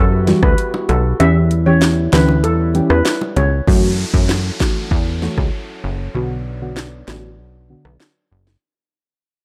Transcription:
0.00 0.34 F#2 loud
0.00 1.18 E3 medium
0.00 1.16 B3 medium
0.00 1.16 F#4 medium
0.00 1.17 G4 medium
0.27 0.48 E3 medium
0.27 0.49 G3 medium
0.27 0.49 F#4 medium
0.27 snare medium
0.27 closed hi-hat soft
0.27 high bongo medium
0.43 0.55 D2 medium
0.43 0.55 B4 medium
0.43 kick loud
0.43 cross-stick loud
0.58 closed hi-hat medium
0.74 high bongo medium
0.89 1.14 B1 loud
0.89 1.02 A4 medium
0.89 closed hi-hat soft
0.89 low bongo medium
1.20 2.09 E2 loud
1.20 1.41 E3 loud
1.20 3.50 G3 medium
1.20 1.41 C#4 medium
1.20 3.50 C#4 medium
1.20 3.50 E4 medium
1.20 1.41 G4 loud
1.20 1.46 E5 loud
1.20 closed hi-hat medium
1.51 closed hi-hat medium
1.66 1.88 E3 medium
1.66 1.88 C#4 medium
1.66 1.88 G4 medium
1.66 1.92 C#5 medium
1.82 snare loud
1.82 clap medium
1.82 closed hi-hat medium
2.13 2.45 D2 loud
2.13 2.34 E3 medium
2.13 2.34 C#4 medium
2.13 2.34 G4 medium
2.13 2.38 B4 medium
2.13 snare loud
2.13 clap loud
2.13 closed hi-hat medium
2.13 low bongo medium
2.28 high bongo medium
2.44 2.81 E2 loud
2.44 2.56 A4 medium
2.44 closed hi-hat medium
2.74 2.96 E3 medium
2.74 2.96 C#4 medium
2.74 2.96 G4 medium
2.74 closed hi-hat soft
2.74 high bongo medium
2.90 3.03 E2 medium
2.90 3.03 B4 medium
2.90 cross-stick loud
3.05 snare loud
3.05 clap medium
3.05 closed hi-hat medium
3.21 high bongo medium
3.36 3.61 C#2 medium
3.36 3.49 C#5 medium
3.36 closed hi-hat soft
3.36 low bongo medium
3.67 4.05 F#2 loud
3.67 3.89 E3 medium
3.67 8.58 F#3 medium
3.67 3.89 A3 medium
3.67 6.12 C#4 medium
3.67 6.12 E4 medium
3.67 3.89 F#4 loud
3.67 6.12 A4 medium
3.67 kick loud
3.67 downlifter medium
4.14 4.51 F#2 medium
4.14 4.35 E3 medium
4.14 4.35 A3 medium
4.14 4.35 F#4 medium
4.14 kick medium
4.29 snare loud
4.29 clap medium
4.60 4.81 E3 medium
4.60 4.82 A3 medium
4.60 4.82 F#4 medium
4.60 kick medium
4.60 snare loud
4.60 clap medium
4.91 5.29 E2 loud
4.91 kick medium
5.22 5.43 E3 medium
5.22 5.43 A3 medium
5.22 5.44 F#4 medium
5.22 snare medium
5.38 5.50 C#2 medium
5.38 kick loud
5.38 cross-stick medium
5.84 6.09 F#1 medium
6.15 7.04 B1 loud
6.15 6.36 D3 loud
6.15 8.60 B3 medium
6.15 6.36 B3 medium
6.15 8.60 D4 medium
6.15 6.36 F#4 loud
6.61 6.82 D3 medium
6.61 6.83 B3 medium
6.61 6.83 F#4 medium
6.77 snare loud
6.77 clap medium
7.07 7.40 A1 medium
7.07 7.29 D3 medium
7.07 7.29 B3 medium
7.07 7.29 F#4 medium
7.07 snare loud
7.07 clap medium
7.39 7.76 B1 loud
7.69 7.91 D3 medium
7.69 7.91 B3 medium
7.69 7.91 F#4 medium
7.85 7.97 B1 medium
7.85 cross-stick loud
8.00 snare loud
8.00 clap medium
8.32 8.56 F#1 medium
8.47 snare medium

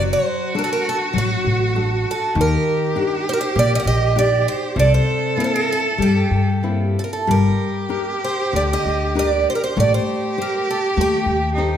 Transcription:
0.00 0.13 F#1 medium
0.00 0.52 F#3 medium
0.00 2.37 F#4 loud
0.13 0.53 C5 medium
0.55 1.03 D4 soft
0.55 1.03 F#4 soft
0.55 1.03 A4 medium
0.55 0.63 A#4 medium
0.64 0.69 A4 medium
0.73 0.87 A#4 medium
0.89 0.96 A4 medium
1.13 1.34 A1 medium
1.13 1.73 F#3 medium
1.18 2.10 F#4 medium
1.45 2.04 A1 medium
1.75 2.23 D4 soft
1.75 2.24 F#4 soft
1.75 2.24 A4 soft
2.11 2.36 A4 medium
2.35 2.55 D#2 loud
2.35 2.93 D#3 medium
2.35 4.78 G4 loud
2.41 3.24 A#4 medium
2.96 3.43 D4 medium
2.96 3.44 D#4 soft
2.96 3.44 G4 medium
3.29 3.33 C5 medium
3.33 3.40 A#4 medium
3.41 3.57 C5 medium
3.55 3.75 A#1 loud
3.55 4.13 A#3 medium
3.55 3.71 D5 loud
3.75 3.79 D#5 medium
3.80 3.85 F#5 medium
3.86 4.45 A#1 medium
3.86 4.18 D#5 medium
4.16 4.64 D4 medium
4.16 4.64 D#4 soft
4.16 4.65 G4 medium
4.16 4.48 D5 loud
4.48 4.78 C5 medium
4.76 4.96 C2 loud
4.76 5.36 C3 medium
4.76 6.97 A4 loud
4.76 4.93 D5 loud
4.94 5.36 C5 medium
5.36 5.87 A#3 soft
5.36 5.87 C4 soft
5.36 5.87 E4 medium
5.36 5.44 A#4 medium
5.44 5.51 C5 medium
5.56 5.71 A#4 medium
5.73 5.80 A4 medium
5.98 6.20 G2 medium
5.98 6.61 G3 medium
6.02 7.01 G4 medium
6.31 6.94 G2 medium
6.63 7.15 A#3 soft
6.63 7.15 C4 soft
6.63 7.16 E4 soft
6.99 7.04 A4 medium
7.04 7.11 A#4 medium
7.13 7.28 A4 medium
7.27 7.49 G1 medium
7.27 7.88 G3 medium
7.27 9.73 G4 loud
7.27 8.24 A#4 medium
7.89 8.40 D4 soft
7.89 8.41 G4 soft
7.89 8.41 A#4 medium
8.24 8.53 C5 medium
8.53 8.74 D2 medium
8.53 9.14 D3 medium
8.53 8.61 D5 medium
8.73 9.19 D#5 medium
8.85 9.45 D2 medium
9.15 9.64 D4 soft
9.15 9.65 G4 soft
9.15 9.65 A#4 medium
9.19 9.49 D5 medium
9.50 9.52 C5 medium
9.55 9.61 A#4 medium
9.64 9.78 C5 medium
9.76 9.97 A1 loud
9.76 10.35 A3 medium
9.76 11.52 G4 loud
9.76 9.94 D5 medium
9.94 10.35 C5 medium
10.38 10.85 G4 soft
10.38 10.86 C5 medium
10.42 10.70 A#4 medium
10.71 10.78 A4 medium
10.97 11.16 D#2 medium
10.97 11.55 A3 medium
11.01 11.77 G4 medium
11.26 11.77 D#2 medium
11.55 11.77 D#4 medium
11.55 11.77 G4 soft
11.55 11.77 A4 soft
11.55 11.77 C5 medium

